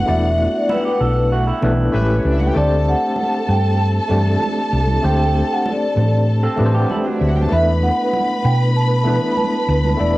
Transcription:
0.00 1.95 G3 soft
0.00 0.05 A3 medium
0.00 0.06 B3 medium
0.00 0.07 D4 medium
0.00 0.08 E4 medium
0.00 1.58 F#4 medium
0.00 1.64 B4 medium
0.00 0.11 F#5 medium
0.00 1.58 F#5 loud
0.05 0.45 E1 medium
0.05 0.82 A3 medium
0.05 0.82 B3 medium
0.05 0.83 D4 medium
0.05 0.83 E4 medium
0.05 0.83 D5 medium
0.10 0.57 E5 medium
0.38 muted conga soft
0.57 0.71 D5 medium
0.69 0.85 G3 soft
0.69 0.84 E4 medium
0.69 1.29 B4 medium
0.69 high conga medium
0.85 1.00 B3 soft
0.85 1.00 G4 medium
1.01 1.50 B1 medium
1.01 1.30 A4 medium
1.32 1.47 A3 medium
1.32 1.46 F#4 medium
1.47 1.91 G3 medium
1.47 1.91 E4 medium
1.61 1.88 B1 medium
1.61 1.91 A3 medium
1.61 1.93 B3 medium
1.61 1.94 D4 medium
1.61 1.92 E4 medium
1.61 1.94 B4 medium
1.61 muted conga soft
1.61 low conga medium
1.92 2.19 A1 medium
1.92 2.42 A3 medium
1.92 2.42 C#4 medium
1.92 2.43 E4 medium
1.92 2.08 E4 medium
1.92 2.43 G4 medium
1.92 2.44 B4 loud
1.92 2.08 E5 medium
1.92 high conga medium
2.01 2.09 A3 medium
2.01 2.09 A4 soft
2.09 2.17 B3 medium
2.09 2.17 B4 medium
2.16 2.24 C#4 medium
2.16 2.24 C#5 medium
2.25 2.50 C#2 medium
2.25 2.32 D4 medium
2.25 2.32 D5 medium
2.31 2.39 E4 medium
2.31 2.39 E5 medium
2.40 2.47 F#4 medium
2.40 2.47 F#5 medium
2.40 high conga medium
2.47 2.55 G4 medium
2.47 2.55 G5 loud
2.54 2.93 D2 loud
2.54 3.30 A3 medium
2.54 3.31 C4 medium
2.54 3.31 D4 medium
2.54 3.31 G4 medium
2.54 6.95 A4 medium
2.54 3.32 C5 medium
2.54 2.88 D5 medium
2.54 6.95 A5 loud
2.54 muted conga soft
2.85 3.45 F#5 medium
2.85 muted conga soft
3.16 high conga medium
3.49 3.98 G2 medium
3.49 3.78 G5 medium
3.81 4.41 A5 medium
4.08 4.35 G2 medium
4.08 4.66 A3 medium
4.08 4.66 C4 medium
4.08 4.66 D4 medium
4.08 4.67 G4 medium
4.08 4.67 D5 medium
4.08 muted conga soft
4.08 low conga medium
4.40 5.00 A5 loud
4.40 high conga medium
4.73 4.98 C2 medium
4.87 high conga medium
5.02 5.41 D2 medium
5.02 5.78 A3 medium
5.02 5.78 C4 medium
5.02 5.79 D4 medium
5.02 5.79 G4 medium
5.02 5.79 C5 medium
5.02 5.52 G5 loud
5.02 muted conga soft
5.34 muted conga soft
5.53 5.66 F#5 medium
5.66 high conga medium
5.70 6.26 D5 medium
5.96 6.47 A2 medium
5.96 low conga medium
6.43 6.72 C4 medium
6.43 6.72 A4 medium
6.56 6.84 A2 medium
6.56 7.14 A3 medium
6.56 7.14 C4 medium
6.56 7.15 D4 medium
6.56 7.15 G4 medium
6.56 6.65 B4 medium
6.56 muted conga soft
6.56 low conga medium
6.66 7.19 C5 medium
6.74 6.89 B3 soft
6.74 6.89 G4 medium
6.90 7.05 G3 medium
6.90 7.04 E4 medium
6.90 high conga medium
7.04 7.50 F#3 soft
7.04 7.12 C4 soft
7.04 7.50 D4 soft
7.04 7.12 C5 medium
7.13 7.20 D4 medium
7.13 7.20 D5 medium
7.19 7.46 D2 medium
7.19 7.28 E4 medium
7.19 7.28 E5 medium
7.28 7.36 F#4 medium
7.28 7.36 F#5 medium
7.35 7.44 G4 medium
7.35 7.44 G5 medium
7.35 high conga medium
7.43 7.51 A4 medium
7.43 7.51 A5 medium
7.49 7.89 E2 medium
7.49 8.26 A3 medium
7.49 8.26 B3 medium
7.49 8.26 D4 medium
7.49 8.27 E4 medium
7.49 10.18 B4 medium
7.49 8.27 B4 medium
7.49 7.66 E5 medium
7.49 10.18 B5 medium
7.49 muted conga soft
7.82 8.46 F#5 medium
7.82 muted conga soft
8.13 high conga medium
8.45 9.18 B2 medium
8.45 8.59 G5 loud
8.77 9.27 A5 medium
9.04 9.61 A3 medium
9.04 9.62 B3 medium
9.04 9.63 D4 medium
9.04 9.63 E4 medium
9.04 9.63 B4 medium
9.04 muted conga soft
9.04 low conga medium
9.31 9.37 B5 medium
9.37 9.95 A5 loud
9.37 high conga medium
9.68 9.93 D2 medium
9.84 high conga medium
9.97 10.18 E1 medium
9.97 10.18 A3 medium
9.97 10.18 B3 medium
9.97 10.18 D4 medium
9.97 10.18 E4 medium
9.97 10.18 A4 medium
9.97 10.18 D5 medium
9.97 muted conga soft

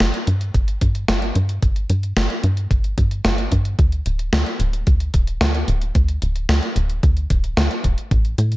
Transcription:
0.00 0.12 G1 medium
0.00 snare loud
0.00 closed hi-hat medium
0.14 closed hi-hat soft
0.27 0.51 G2 medium
0.27 closed hi-hat medium
0.41 closed hi-hat soft
0.54 0.78 G1 medium
0.54 kick loud
0.54 closed hi-hat medium
0.68 closed hi-hat soft
0.81 1.05 G2 medium
0.81 kick medium
0.81 closed hi-hat medium
0.95 closed hi-hat soft
1.08 1.32 G1 medium
1.08 snare loud
1.08 closed hi-hat medium
1.22 closed hi-hat soft
1.35 1.59 G2 medium
1.35 closed hi-hat medium
1.49 closed hi-hat soft
1.62 1.86 G1 loud
1.62 kick loud
1.62 closed hi-hat medium
1.76 closed hi-hat soft
1.90 2.13 G2 medium
1.90 closed hi-hat medium
2.03 closed hi-hat soft
2.17 2.28 G1 medium
2.17 snare loud
2.17 closed hi-hat medium
2.30 closed hi-hat soft
2.44 2.67 G2 loud
2.44 closed hi-hat medium
2.57 closed hi-hat soft
2.71 2.94 G1 medium
2.71 kick loud
2.71 closed hi-hat medium
2.84 closed hi-hat soft
2.98 3.21 G2 medium
2.98 kick loud
2.98 closed hi-hat loud
3.11 closed hi-hat soft
3.25 3.48 G1 medium
3.25 snare loud
3.25 closed hi-hat medium
3.38 closed hi-hat soft
3.52 3.75 G2 medium
3.52 kick medium
3.52 closed hi-hat medium
3.65 closed hi-hat soft
3.79 4.02 D2 loud
3.79 kick loud
3.79 closed hi-hat medium
3.92 closed hi-hat soft
4.06 4.29 D1 medium
4.06 closed hi-hat medium
4.19 closed hi-hat soft
4.33 4.45 D2 medium
4.33 snare loud
4.33 closed hi-hat medium
4.46 closed hi-hat soft
4.60 4.83 D1 medium
4.60 closed hi-hat medium
4.73 closed hi-hat soft
4.87 5.11 D2 medium
4.87 kick loud
4.87 closed hi-hat medium
5.00 closed hi-hat soft
5.14 5.38 D1 medium
5.14 kick loud
5.14 closed hi-hat loud
5.27 closed hi-hat soft
5.41 5.65 D2 medium
5.41 snare loud
5.41 closed hi-hat medium
5.55 closed hi-hat soft
5.68 5.92 D1 medium
5.68 closed hi-hat medium
5.82 closed hi-hat soft
5.95 6.19 D2 loud
5.95 kick loud
5.95 closed hi-hat medium
6.08 closed hi-hat soft
6.22 6.46 D1 medium
6.22 closed hi-hat medium
6.36 closed hi-hat soft
6.49 6.61 D2 medium
6.49 snare loud
6.49 closed hi-hat medium
6.63 closed hi-hat soft
6.76 7.00 D1 medium
6.76 closed hi-hat medium
6.90 closed hi-hat soft
7.03 7.27 D2 medium
7.03 kick loud
7.03 closed hi-hat medium
7.17 closed hi-hat soft
7.30 7.54 D1 medium
7.30 kick loud
7.30 closed hi-hat medium
7.44 closed hi-hat soft
7.57 7.69 D2 medium
7.57 snare loud
7.57 closed hi-hat medium
7.71 closed hi-hat soft
7.84 7.96 D1 medium
7.84 kick medium
7.84 closed hi-hat medium
7.98 closed hi-hat soft
8.11 8.35 A1 loud
8.11 kick loud
8.11 closed hi-hat medium
8.25 closed hi-hat soft
8.38 8.57 A2 medium
8.38 closed hi-hat medium
8.52 closed hi-hat soft

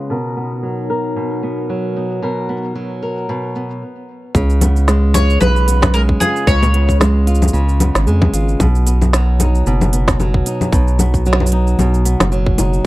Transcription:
0.00 0.16 C#3 medium
0.00 0.16 G#3 medium
0.00 0.36 B3 soft
0.00 0.16 F4 medium
0.00 0.10 G#4 medium
0.10 1.15 B2 medium
0.10 3.78 B2 medium
0.10 3.79 B3 medium
0.10 3.79 D#4 medium
0.10 3.78 A#4 medium
0.10 0.89 A#4 medium
0.37 1.43 B3 medium
0.37 cabasa medium
0.52 cabasa soft
0.63 1.68 F#3 medium
0.90 2.22 A#4 medium
0.90 cabasa medium
1.05 cabasa soft
1.16 2.21 B2 medium
1.16 cabasa soft
1.43 2.49 B3 medium
1.43 cabasa medium
1.58 cabasa soft
1.70 2.74 F#3 medium
1.96 3.82 D#4 medium
1.96 cabasa medium
2.11 cabasa soft
2.22 3.28 B2 medium
2.22 3.01 A#4 medium
2.49 3.55 B3 medium
2.57 cabasa medium
2.64 cabasa soft
2.75 3.82 F#3 medium
2.75 cabasa soft
3.03 3.82 A#4 medium
3.03 cabasa medium
3.17 cabasa soft
3.29 3.82 B2 medium
3.55 4.32 B3 soft
3.55 cabasa medium
3.70 cabasa soft
4.35 5.38 C#2 loud
4.35 5.40 C#3 medium
4.35 kick loud
4.35 cabasa soft
4.50 cabasa soft
4.61 5.67 B3 medium
4.61 closed hi-hat medium
4.61 low conga medium
4.61 cabasa medium
4.76 cabasa soft
4.88 5.93 G#3 medium
4.88 snare medium
4.88 cabasa soft
5.14 6.20 F4 medium
5.14 5.40 C#5 loud
5.14 closed hi-hat medium
5.14 low conga medium
5.14 cabasa medium
5.30 cabasa soft
5.41 6.18 B1 loud
5.41 6.46 C#3 medium
5.41 5.93 B4 loud
5.41 low conga medium
5.41 cabasa soft
5.56 cabasa soft
5.68 6.73 B3 medium
5.68 closed hi-hat medium
5.68 cabasa medium
5.82 kick loud
5.82 snare medium
5.82 low conga medium
5.82 cabasa soft
5.94 6.99 G#3 medium
5.94 6.01 A#4 loud
5.94 cabasa soft
6.09 kick loud
6.20 7.26 F4 medium
6.20 6.48 G#4 medium
6.20 closed hi-hat loud
6.20 low conga medium
6.20 cabasa medium
6.36 cabasa soft
6.47 7.50 C#2 loud
6.47 7.52 C#3 medium
6.47 6.97 C#5 loud
6.47 kick loud
6.47 cabasa soft
6.63 low conga medium
6.63 cabasa soft
6.74 7.80 B3 medium
6.74 closed hi-hat medium
6.89 kick medium
6.89 cabasa soft
7.00 8.06 G#3 medium
7.00 snare medium
7.00 low conga medium
7.00 cabasa soft
7.27 8.33 F4 medium
7.27 closed hi-hat medium
7.27 cabasa soft
7.35 cabasa soft
7.42 low conga medium
7.42 cabasa medium
7.48 cabasa medium
7.53 7.91 C#2 medium
7.53 8.66 C#3 medium
7.69 cabasa soft
7.80 8.87 B3 medium
7.80 closed hi-hat medium
7.80 low conga medium
7.80 cabasa medium
7.95 8.08 G#1 loud
7.95 snare medium
7.95 cabasa soft
8.07 8.29 F2 medium
8.07 8.66 G#3 medium
8.07 cabasa soft
8.22 kick loud
8.22 low conga medium
8.33 8.56 G#1 loud
8.33 8.66 F4 medium
8.33 closed hi-hat medium
8.33 cabasa medium
8.49 cabasa soft
8.60 9.63 B1 loud
8.60 9.66 B2 medium
8.60 kick loud
8.60 low conga medium
8.60 cabasa soft
8.75 cabasa soft
8.87 9.93 B3 medium
8.87 closed hi-hat medium
8.87 cabasa medium
9.02 low conga medium
9.02 cabasa soft
9.13 10.19 F#3 medium
9.13 snare medium
9.13 cabasa soft
9.40 10.45 D#4 medium
9.40 closed hi-hat medium
9.40 low conga medium
9.40 cabasa medium
9.55 cabasa soft
9.66 10.43 F#1 loud
9.66 10.72 B2 medium
9.66 cabasa soft
9.81 low conga medium
9.81 cabasa soft
9.93 10.99 B3 medium
9.93 closed hi-hat medium
9.93 cabasa medium
10.08 kick loud
10.08 snare medium
10.08 cabasa soft
10.20 11.25 F#3 medium
10.20 low conga medium
10.20 cabasa soft
10.34 kick loud
10.46 11.51 D#4 medium
10.46 closed hi-hat medium
10.46 cabasa medium
10.61 low conga medium
10.61 cabasa soft
10.72 11.75 B1 loud
10.72 11.78 B2 medium
10.72 kick loud
10.72 cabasa soft
10.88 cabasa soft
10.99 12.05 B3 medium
10.99 low conga medium
10.99 cabasa medium
11.14 kick medium
11.14 cabasa soft
11.26 12.30 F#3 medium
11.26 cabasa soft
11.33 snare medium
11.40 low conga medium
11.46 cabasa medium
11.52 12.57 D#4 medium
11.52 closed hi-hat medium
11.67 cabasa soft
11.79 12.16 B1 medium
11.79 12.86 B2 medium
11.79 low conga medium
11.79 cabasa soft
11.94 cabasa soft
12.05 12.86 B3 medium
12.05 closed hi-hat medium
12.05 cabasa medium
12.20 12.58 F#1 loud
12.20 snare medium
12.20 low conga medium
12.20 cabasa soft
12.32 12.86 F#3 medium
12.32 cabasa soft
12.46 kick loud
12.58 12.81 F#1 medium
12.58 12.86 D#4 medium
12.58 closed hi-hat medium
12.58 low conga medium
12.58 cabasa medium
12.73 cabasa soft

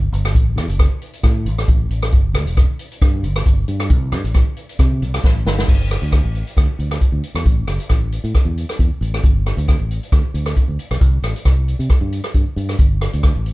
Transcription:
0.12 0.35 G1 loud
0.12 closed hi-hat soft
0.25 cross-stick medium
0.25 closed hi-hat soft
0.35 0.57 A1 medium
0.35 kick medium
0.35 closed hi-hat soft
0.56 0.66 E2 medium
0.56 cross-stick medium
0.56 closed hi-hat soft
0.68 0.86 F#1 medium
0.68 closed hi-hat soft
0.79 kick medium
0.79 cross-stick medium
0.79 closed hi-hat soft
1.01 closed hi-hat soft
1.13 closed hi-hat soft
1.23 1.47 A2 medium
1.23 kick medium
1.23 cross-stick medium
1.23 closed hi-hat soft
1.45 1.63 A1 medium
1.45 closed hi-hat soft
1.58 cross-stick medium
1.58 closed hi-hat soft
1.68 1.86 A1 medium
1.68 kick medium
1.68 closed hi-hat soft
1.89 2.13 A1 medium
1.89 closed hi-hat soft
2.02 cross-stick medium
2.02 closed hi-hat soft
2.12 2.35 G1 loud
2.12 kick medium
2.12 closed hi-hat soft
2.34 2.44 D2 medium
2.34 cross-stick medium
2.34 closed hi-hat soft
2.45 2.64 E1 medium
2.45 closed hi-hat soft
2.57 kick medium
2.57 cross-stick medium
2.57 closed hi-hat soft
2.79 closed hi-hat soft
2.91 closed hi-hat soft
3.02 3.25 G2 medium
3.02 kick medium
3.02 cross-stick medium
3.02 closed hi-hat soft
3.23 3.41 G1 medium
3.23 closed hi-hat soft
3.36 cross-stick medium
3.36 closed hi-hat medium
3.46 3.64 G1 medium
3.46 kick medium
3.46 closed hi-hat medium
3.68 3.92 G2 medium
3.68 closed hi-hat soft
3.80 cross-stick medium
3.80 closed hi-hat medium
3.90 4.14 C2 medium
3.90 kick medium
3.90 closed hi-hat soft
4.12 4.22 G2 medium
4.12 cross-stick medium
4.12 closed hi-hat medium
4.24 4.42 A1 medium
4.24 closed hi-hat soft
4.34 kick medium
4.34 cross-stick medium
4.34 closed hi-hat soft
4.57 closed hi-hat soft
4.69 closed hi-hat soft
4.79 5.03 C3 medium
4.79 kick medium
4.79 cross-stick medium
4.79 closed hi-hat soft
5.01 5.19 C2 medium
5.01 closed hi-hat soft
5.14 cross-stick medium
5.14 closed hi-hat medium
5.24 5.43 A1 medium
5.24 kick medium
5.24 snare soft
5.45 5.65 G1 medium
5.45 snare medium
5.58 snare medium
5.68 5.96 G1 medium
5.68 kick medium
5.68 crash medium
5.91 cross-stick medium
5.91 closed hi-hat soft
6.02 6.20 D2 medium
6.02 closed hi-hat soft
6.12 kick medium
6.12 cross-stick medium
6.12 closed hi-hat soft
6.24 6.42 A1 medium
6.35 closed hi-hat soft
6.47 closed hi-hat soft
6.56 6.66 D2 medium
6.56 kick medium
6.56 cross-stick medium
6.56 closed hi-hat soft
6.79 6.97 D2 medium
6.79 closed hi-hat soft
6.91 cross-stick medium
6.91 closed hi-hat soft
7.01 kick medium
7.01 closed hi-hat soft
7.12 7.21 D2 medium
7.23 closed hi-hat soft
7.34 7.43 E2 medium
7.34 cross-stick medium
7.34 closed hi-hat soft
7.45 7.63 A1 loud
7.45 kick medium
7.45 closed hi-hat soft
7.67 7.77 F#1 medium
7.67 cross-stick medium
7.67 closed hi-hat soft
7.80 closed hi-hat medium
7.89 8.18 A1 medium
7.89 kick medium
7.89 cross-stick medium
7.89 closed hi-hat soft
8.12 closed hi-hat soft
8.24 8.32 A2 medium
8.24 closed hi-hat soft
8.35 kick medium
8.35 cross-stick medium
8.35 closed hi-hat soft
8.45 8.64 E2 medium
8.57 closed hi-hat soft
8.69 cross-stick medium
8.69 closed hi-hat soft
8.79 8.89 E2 medium
8.79 kick medium
8.79 closed hi-hat soft
9.01 9.19 A1 loud
9.01 closed hi-hat soft
9.14 cross-stick medium
9.14 closed hi-hat soft
9.24 9.51 G1 medium
9.24 kick medium
9.24 closed hi-hat soft
9.46 cross-stick medium
9.46 closed hi-hat soft
9.57 9.75 D2 loud
9.57 closed hi-hat soft
9.68 kick medium
9.68 cross-stick medium
9.68 closed hi-hat soft
9.80 9.98 A1 medium
9.91 closed hi-hat soft
10.03 closed hi-hat soft
10.12 10.22 D2 medium
10.12 kick medium
10.12 cross-stick medium
10.12 closed hi-hat soft
10.34 10.52 D2 medium
10.34 closed hi-hat medium
10.46 cross-stick medium
10.46 closed hi-hat soft
10.56 kick medium
10.56 closed hi-hat soft
10.68 10.77 D2 medium
10.79 closed hi-hat soft
10.91 10.99 B1 medium
10.91 cross-stick medium
10.91 closed hi-hat soft
11.01 11.19 C2 loud
11.01 kick medium
11.01 closed hi-hat soft
11.22 11.32 A1 medium
11.22 cross-stick medium
11.22 closed hi-hat soft
11.36 closed hi-hat soft
11.45 11.73 C2 medium
11.45 kick medium
11.45 cross-stick medium
11.45 closed hi-hat soft
11.68 closed hi-hat soft
11.79 11.88 C3 medium
11.79 closed hi-hat soft
11.90 kick medium
11.90 cross-stick medium
11.90 closed hi-hat soft
12.01 12.19 G2 medium
12.12 closed hi-hat soft
12.24 cross-stick medium
12.24 closed hi-hat medium
12.34 12.44 G2 medium
12.34 kick medium
12.34 closed hi-hat soft
12.56 12.74 G2 medium
12.56 closed hi-hat soft
12.69 cross-stick medium
12.69 closed hi-hat soft
12.79 13.06 G1 medium
12.79 kick medium
12.79 closed hi-hat soft
13.01 cross-stick medium
13.01 closed hi-hat soft
13.13 13.31 D2 loud
13.13 closed hi-hat soft
13.23 kick medium
13.23 cross-stick medium
13.23 closed hi-hat soft
13.36 13.53 A1 medium
13.46 closed hi-hat soft

